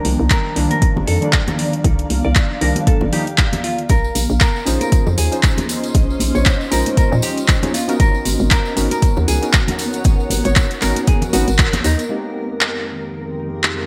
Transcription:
Already playing: synth keys D#3 F3 G3 A#3 D4, ambient pad D#3 D5 F5 G5 A#5, hollow-body jazz guitar A#4
0.05 fm bass C2, open hi-hat, high conga
0.20 fm bass C2
0.30 hollow-body jazz guitar A#4, kick, clap, closed hi-hat
0.55 fm bass C2, synth keys D#3 F3 G3 A#3 D4, open hi-hat
0.71 hollow-body jazz guitar A#4, closed hi-hat, high conga
0.82 kick, closed hi-hat
0.96 fm bass G1, low conga
1.07 fm bass F2, hollow-body jazz guitar A4, open hi-hat
1.21 synth keys D#3 F3 G3 A#3 D4, closed hi-hat
1.33 kick, clap, closed hi-hat
1.47 closed hi-hat, high conga, low conga
1.59 open hi-hat
1.73 closed hi-hat
1.84 fm bass C2, kick, closed hi-hat
1.99 closed hi-hat
2.10 fm bass C2, open hi-hat, high conga
2.25 fm bass C2, hollow-body jazz guitar D5
2.35 kick, clap, closed hi-hat
2.61 fm bass C2, synth keys D#3 F3 G3 A#3 D4, hollow-body jazz guitar A#4, open hi-hat
2.76 closed hi-hat, high conga
2.87 hollow-body jazz guitar A4, kick, closed hi-hat
3.01 fm bass G1, low conga
3.12 synth keys D#3 F3 G3 A#3 D#4, hollow-body jazz guitar G4, open hi-hat
3.27 closed hi-hat
3.38 kick, clap, closed hi-hat
3.53 closed hi-hat, high conga, low conga
3.64 hollow-body jazz guitar F4, open hi-hat
3.79 closed hi-hat
3.89 fm bass A#1, ambient pad C#4, hollow-body jazz guitar A#4, kick, closed hi-hat, tambourine
4.04 ambient pad C5, tambourine
4.15 fm bass A#1, open hi-hat, tambourine, high conga
4.24 ambient pad C6
4.30 fm bass A#1, tambourine
4.38 hollow-body jazz guitar A#4, ambient pad D#5, kick, clap, closed hi-hat, tambourine
4.56 tambourine
4.66 fm bass A#1, synth keys C#4 D#4 F4 G#4 C5, open hi-hat, tambourine
4.81 hollow-body jazz guitar A#4, closed hi-hat, tambourine, high conga
4.92 kick, closed hi-hat, tambourine
5.07 fm bass F2, tambourine, low conga
5.18 fm bass D#2, hollow-body jazz guitar G#4, open hi-hat, tambourine
5.31 synth keys C#4 D#4 F4 G#4 C5, closed hi-hat, tambourine
5.43 kick, clap, closed hi-hat, tambourine
5.58 closed hi-hat, tambourine, high conga, low conga
5.69 open hi-hat, tambourine
5.83 closed hi-hat, tambourine
5.94 fm bass A#1, kick, closed hi-hat, tambourine
6.10 tambourine
6.20 fm bass A#1, open hi-hat, tambourine, high conga
6.35 fm bass A#1, hollow-body jazz guitar C#5, tambourine
6.46 kick, clap, closed hi-hat, tambourine
6.61 tambourine
6.71 fm bass A#1, synth keys G#3 C#4 D#4 F4 C5, hollow-body jazz guitar A#4, open hi-hat, tambourine
6.86 closed hi-hat, tambourine, high conga
6.97 hollow-body jazz guitar A#4, kick, closed hi-hat, tambourine
7.12 fm bass A#2, tambourine, low conga
7.22 hollow-body jazz guitar G4, open hi-hat, tambourine
7.37 closed hi-hat, tambourine
7.48 kick, clap, closed hi-hat, tambourine
7.62 synth keys C#4 D#4 F4 G#4 C#5, closed hi-hat, tambourine, high conga, low conga
7.74 ambient pad B3, hollow-body jazz guitar F4, open hi-hat, tambourine
7.83 ambient pad A#4
7.88 synth keys B3 C#4 D#4 F#4 A#4, closed hi-hat, tambourine
8.00 fm bass G#1, hollow-body jazz guitar A#4, kick, closed hi-hat, tambourine
8.15 tambourine
8.20 ambient pad C#5
8.25 fm bass G#1, open hi-hat, tambourine, high conga
8.31 ambient pad F#5
8.39 fm bass G#1, tambourine
8.51 hollow-body jazz guitar A#4, kick, clap, closed hi-hat, tambourine
8.65 tambourine
8.76 fm bass G#1, synth keys B3 C#4 D#4 F#4 A#4, open hi-hat, tambourine
8.91 hollow-body jazz guitar A#4, closed hi-hat, tambourine, high conga
9.02 kick, closed hi-hat, tambourine
9.16 fm bass D#2, tambourine, low conga
9.28 fm bass C#2, hollow-body jazz guitar G#4, open hi-hat, tambourine
9.42 synth keys B3 C#4 D#4 F#4 A#4, closed hi-hat, tambourine
9.53 kick, clap, closed hi-hat, tambourine
9.68 closed hi-hat, tambourine, high conga, low conga
9.79 open hi-hat, tambourine
9.93 closed hi-hat, tambourine
10.04 fm bass G#1, kick, closed hi-hat, tambourine
10.20 tambourine
10.30 fm bass G#1, open hi-hat, tambourine, high conga
10.45 fm bass G#1, hollow-body jazz guitar C#5, closed hi-hat, tambourine
10.56 kick, clap, closed hi-hat, tambourine
10.71 closed hi-hat, tambourine
10.81 fm bass G#1, synth keys B3 C#4 D#4 F#4 A#4, hollow-body jazz guitar A#4, clap, open hi-hat, tambourine
10.96 closed hi-hat, tambourine, high conga
11.07 hollow-body jazz guitar G#4, kick, closed hi-hat, tambourine
11.22 closed hi-hat, tambourine, low conga
11.33 fm bass G#1, synth keys B3 C#4 D#4 F#4 B4, hollow-body jazz guitar F#4, open hi-hat, tambourine
11.48 fm bass G#1, closed hi-hat, tambourine
11.58 kick, clap, closed hi-hat, tambourine
11.73 closed hi-hat, tambourine, high conga, low conga
11.84 fm bass D#2, hollow-body jazz guitar D#4, open hi-hat, tambourine
11.99 closed hi-hat, tambourine
12.09 ambient pad F2 D#3 G#3 C4 D#4 G4 A#4, synth keys G#3 A#3 C4 D#4 G4
12.31 ambient pad G#3
12.58 ambient pad F5, clap
12.67 ambient pad G5
13.63 clap

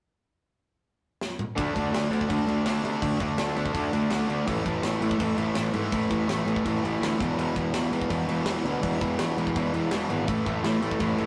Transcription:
1.21 snare
1.39 mid tom
1.56 picked electric bass D2, overdriven electric guitar D3 A3 D4, kick, crash
1.75 picked electric bass D2, overdriven electric guitar D3 A3 D4, kick, crash
1.92 picked electric bass D2, overdriven electric guitar D3 A3 D4, snare, crash
2.11 picked electric bass D2, overdriven electric guitar D3 A3 D4, crash
2.21 kick
2.29 picked electric bass D2, overdriven electric guitar D3 A3 D4, kick, crash
2.47 picked electric bass D2, overdriven electric guitar D3 A3 D4, crash
2.66 picked electric bass D2, overdriven electric guitar D3 A3 D4, snare, crash
2.83 picked electric bass C3, overdriven electric guitar D3 A3 D4, crash
3.01 picked electric bass D2, overdriven electric guitar D3 A3 D4, kick, crash
3.20 picked electric bass D2, overdriven electric guitar D3 A3 D4, kick, crash
3.37 picked electric bass D2, overdriven electric guitar D3 A3 D4, snare, crash
3.56 picked electric bass D2, overdriven electric guitar D3 A3 D4, crash
3.66 kick
3.74 picked electric bass D2, overdriven electric guitar D3 A3 D4, kick, crash
3.93 picked electric bass D2, overdriven electric guitar D3 A3 D4, crash
4.10 picked electric bass D2, overdriven electric guitar D3 A3 D4, snare, crash
4.29 picked electric bass D2, overdriven electric guitar D3 A3 D4, crash
4.47 picked electric bass A1, overdriven electric guitar A2 E3 A3, kick, crash
4.66 picked electric bass A1, overdriven electric guitar A2 E3 A3, kick, crash
4.82 picked electric bass A1, overdriven electric guitar A2 E3 A3, snare, crash
5.01 picked electric bass A1, overdriven electric guitar A2 E3 A3, crash
5.11 kick
5.19 picked electric bass A1, overdriven electric guitar A2 E3 A3, kick, crash
5.37 picked electric bass A1, overdriven electric guitar A2 E3 A3, crash
5.54 picked electric bass A1, overdriven electric guitar A2 E3 A3, snare, crash
5.73 picked electric bass G#2, overdriven electric guitar A2 E3 A3, crash
5.92 picked electric bass A1, overdriven electric guitar A2 E3 A3, kick, crash
6.10 picked electric bass A1, overdriven electric guitar A2 E3 A3, kick, crash
6.28 picked electric bass A1, overdriven electric guitar A2 E3 A3, snare, crash
6.46 picked electric bass A1, overdriven electric guitar A2 E3 A3, crash
6.56 kick
6.65 picked electric bass A1, overdriven electric guitar A2 E3 A3, kick, crash
6.83 picked electric bass A1, overdriven electric guitar A2 E3 A3, crash
7.01 picked electric bass D2, overdriven electric guitar A2 E3 A3, snare, crash
7.19 picked electric bass E1, overdriven electric guitar E2 B2 E3, kick, crash
7.37 picked electric bass E1, overdriven electric guitar E2 B2 E3, crash
7.56 picked electric bass E1, overdriven electric guitar E2 B2 E3, kick, crash
7.74 picked electric bass E1, overdriven electric guitar E2 B2 E3, snare, crash
7.92 picked electric bass E1, overdriven electric guitar E2 B2 E3, crash
8.02 kick
8.10 picked electric bass E1, overdriven electric guitar E2 B2 E3, kick, crash
8.28 picked electric bass E1, overdriven electric guitar E2 B2 E3, crash
8.46 picked electric bass E1, overdriven electric guitar E2 B2 E3, snare, crash
8.63 picked electric bass D2, overdriven electric guitar E2 B2 E3, crash
8.83 picked electric bass E1, overdriven electric guitar E2 B2 E3, kick, crash
9.01 picked electric bass E1, overdriven electric guitar E2 B2 E3, kick, crash
9.19 picked electric bass E1, overdriven electric guitar E2 B2 E3, snare, crash
9.36 picked electric bass E1, overdriven electric guitar E2 B2 E3, crash
9.47 kick
9.56 picked electric bass E1, overdriven electric guitar E2 B2 E3, kick, crash
9.74 picked electric bass E1, overdriven electric guitar E2 B2 E3, crash
9.91 picked electric bass E1, overdriven electric guitar E2 B2 E3, snare, crash
10.09 picked electric bass G#1, overdriven electric guitar E2 B2 E3, crash
10.27 picked electric bass A1, overdriven electric guitar A2 E3 A3, kick, crash
10.46 picked electric bass A1, overdriven electric guitar A2 E3 A3, kick, crash
10.63 picked electric bass A1, overdriven electric guitar A2 E3 A3, snare, crash
10.81 picked electric bass A1, overdriven electric guitar A2 E3 A3, crash
10.91 kick
10.99 picked electric bass A1, overdriven electric guitar A2 E3 A3, kick, crash
11.18 picked electric bass A1, overdriven electric guitar A2 E3 A3, crash

